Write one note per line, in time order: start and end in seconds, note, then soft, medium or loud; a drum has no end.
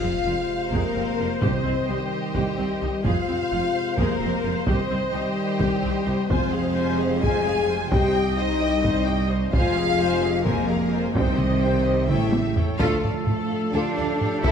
0.00 0.10 F1 soft
0.00 0.11 F2 soft
0.00 1.38 C3 medium
0.00 1.38 G#3 medium
0.00 0.10 C4 soft
0.00 0.68 F4 medium
0.00 3.01 C5 medium
0.00 0.68 F5 medium
0.00 1.38 F5 medium
0.00 impact medium
0.25 0.33 F1 soft
0.25 0.34 F2 soft
0.25 0.33 F4 soft
0.72 0.80 F1 medium
0.72 0.81 F2 medium
0.72 1.42 A#3 medium
0.72 0.94 G#4 soft
0.72 1.42 A#4 medium
0.72 taiko medium
0.95 1.03 F1 soft
0.95 1.05 F2 soft
0.95 1.04 C4 soft
1.19 1.27 F1 soft
1.19 1.27 F2 soft
1.19 1.27 F4 soft
1.41 1.51 C2 medium
1.41 2.07 C3 medium
1.41 3.01 D#3 medium
1.41 3.01 G3 medium
1.41 1.88 C4 medium
1.41 1.63 G4 medium
1.41 1.88 C5 medium
1.41 3.02 D#5 soft
1.41 taiko medium
1.64 1.74 C2 soft
1.64 1.72 C4 soft
1.88 1.97 C2 soft
1.88 1.98 C2 soft
1.88 3.06 G3 medium
1.88 1.96 D#4 soft
1.88 3.06 G4 medium
2.35 2.43 C2 medium
2.35 2.44 C2 medium
2.35 2.57 G4 medium
2.35 taiko medium
2.58 2.66 C2 soft
2.58 2.67 C2 soft
2.58 2.66 C4 soft
2.81 2.90 C2 soft
2.81 2.91 C2 soft
2.81 2.89 D#4 soft
3.04 3.13 F1 medium
3.04 3.14 F2 medium
3.04 4.63 C3 medium
3.04 4.63 G#3 medium
3.04 3.97 F4 medium
3.04 3.27 G#4 medium
3.04 6.25 C5 medium
3.04 3.96 F5 medium
3.04 4.64 F5 medium
3.04 taiko medium
3.28 3.37 F1 soft
3.28 3.38 F2 soft
3.28 3.36 C4 soft
3.52 3.60 F1 soft
3.52 3.60 F2 soft
3.52 3.60 F4 soft
3.98 4.06 F1 medium
3.98 4.07 F2 medium
3.98 4.66 A#3 medium
3.98 4.20 G#4 medium
3.98 4.66 A#4 medium
3.98 taiko medium
4.21 4.29 F1 soft
4.21 4.30 F2 soft
4.21 4.29 C4 soft
4.44 4.53 F1 soft
4.44 4.54 F2 soft
4.44 4.52 F4 soft
4.67 4.76 C2 medium
4.67 6.13 D#3 medium
4.67 6.13 G3 medium
4.67 5.13 C4 medium
4.67 4.89 G4 medium
4.67 5.12 C5 medium
4.67 6.27 D#5 medium
4.67 taiko medium
4.90 4.99 C2 soft
4.90 5.00 C2 soft
4.90 4.98 C4 soft
5.13 5.22 C2 soft
5.13 5.23 C2 soft
5.13 6.27 G3 medium
5.13 5.21 D#4 medium
5.13 6.30 G4 medium
5.59 5.68 C2 medium
5.59 5.69 C2 medium
5.59 5.81 G4 medium
5.59 taiko medium
5.83 5.91 C2 soft
5.83 5.92 C2 soft
5.83 5.91 C4 soft
6.06 6.14 C2 soft
6.06 6.15 C2 soft
6.06 6.14 D#4 soft
6.29 7.88 F1 medium
6.29 7.88 F2 medium
6.29 6.95 F2 medium
6.29 9.50 C3 medium
6.29 7.88 G#3 medium
6.29 7.23 C4 medium
6.29 6.51 F4 medium
6.29 6.51 C5 medium
6.29 7.21 C5 medium
6.29 6.52 G#5 medium
6.29 taiko medium
6.53 6.76 G#4 medium
6.53 6.76 F5 medium
6.76 6.99 F4 medium
6.76 7.00 C5 medium
6.76 6.99 G#5 medium
6.99 7.23 G#4 medium
6.99 7.23 F5 soft
7.22 7.44 F4 medium
7.22 7.74 G#4 medium
7.22 7.44 C5 soft
7.22 7.45 G#5 medium
7.22 7.92 G#5 medium
7.22 taiko medium
7.45 7.69 G#4 medium
7.45 7.69 F5 soft
7.68 7.92 F4 soft
7.68 7.90 C5 medium
7.68 7.92 G#5 soft
7.91 9.50 C2 medium
7.91 9.53 G3 medium
7.91 8.13 D#4 medium
7.91 8.36 G4 medium
7.91 8.13 C5 medium
7.91 8.13 D#5 medium
7.91 8.37 G5 medium
7.91 taiko medium
8.14 8.38 G4 medium
8.14 8.38 D#5 medium
8.14 8.37 G5 medium
8.37 8.61 D#4 medium
8.37 9.30 D#4 medium
8.37 8.61 C5 medium
8.37 9.28 D#5 medium
8.37 8.61 D#5 medium
8.60 8.84 G4 medium
8.60 8.84 D#5 medium
8.60 8.84 G5 medium
8.82 9.05 D#4 medium
8.82 9.05 C5 medium
8.82 9.05 D#5 medium
8.82 taiko medium
9.06 9.31 G4 medium
9.06 9.31 D#5 medium
9.06 9.30 G5 medium
9.29 9.54 D#4 soft
9.29 9.53 C5 medium
9.29 9.53 D#5 soft
9.53 11.12 F1 medium
9.53 11.12 F2 medium
9.53 11.12 C3 medium
9.53 11.15 G#3 medium
9.53 9.75 F4 medium
9.53 10.42 F4 loud
9.53 9.75 C5 medium
9.53 10.42 F5 medium
9.53 9.75 G#5 medium
9.53 taiko medium
9.75 10.00 G#4 medium
9.75 9.99 F5 medium
9.99 10.23 F4 medium
9.99 10.23 C5 medium
9.99 10.22 G#5 medium
10.22 10.46 G#4 medium
10.22 10.45 F5 medium
10.45 11.15 A#3 medium
10.45 10.67 F4 medium
10.45 11.16 A#4 medium
10.45 10.68 C5 soft
10.45 10.67 G#5 medium
10.45 taiko medium
10.69 10.92 G#4 medium
10.69 10.92 F5 soft
10.91 11.15 F4 soft
10.91 11.14 C5 soft
10.91 11.15 G#5 soft
11.14 12.08 C2 medium
11.14 11.81 C3 medium
11.14 12.07 C3 medium
11.14 12.07 D#3 medium
11.14 12.56 G3 medium
11.14 12.09 C4 medium
11.14 11.37 D#4 medium
11.14 12.07 C5 medium
11.14 11.37 C5 medium
11.14 11.37 G5 medium
11.14 taiko loud
11.38 11.62 G4 medium
11.38 11.62 D#5 soft
11.38 11.62 D#5 medium
11.38 taiko mid soft
11.61 11.86 D#4 medium
11.61 11.85 C5 soft
11.61 11.85 G5 medium
11.84 12.09 G4 soft
11.84 12.09 D#5 soft
12.08 12.60 A1 medium
12.08 12.60 A2 soft
12.08 12.56 C#3 medium
12.08 12.56 E4 medium
12.08 12.31 A4 soft
12.08 12.31 C#5 soft
12.08 12.57 E5 medium
12.08 12.31 G5 medium
12.08 taiko mid medium
12.31 12.56 G4 soft
12.31 12.55 A4 soft
12.31 12.56 E5 soft
12.31 taiko high medium
12.56 12.80 A4 soft
12.56 12.80 C#5 soft
12.56 12.80 G5 soft
12.56 taiko low medium
12.79 13.02 D2 medium
12.79 14.52 A2 medium
12.79 14.39 F3 medium
12.79 13.70 A3 medium
12.79 14.52 A3 medium
12.79 14.40 D4 medium
12.79 13.02 F4 medium
12.79 13.24 F4 medium
12.79 14.52 A4 medium
12.79 13.02 A4 medium
12.79 14.40 F5 medium
12.79 taiko medium
13.03 13.13 D2 soft
13.03 13.11 A4 soft
13.03 13.11 D5 soft
13.03 taiko low-mid soft
13.26 13.36 D2 soft
13.26 13.74 A4 medium
13.26 13.35 A4 soft
13.26 taiko low-mid medium
13.73 13.82 D2 medium
13.73 14.44 D4 medium
13.73 13.95 F4 medium
13.73 14.52 G4 medium
13.73 13.96 A4 medium
13.97 14.07 D2 soft
13.97 14.05 A4 medium
13.97 14.05 D5 medium
14.21 taiko low-mid soft
14.43 14.52 A1 medium
14.43 14.52 E3 medium
14.43 14.52 C4 medium
14.43 14.52 E4 medium
14.43 14.52 A4 medium
14.43 14.52 E5 medium
14.43 taiko medium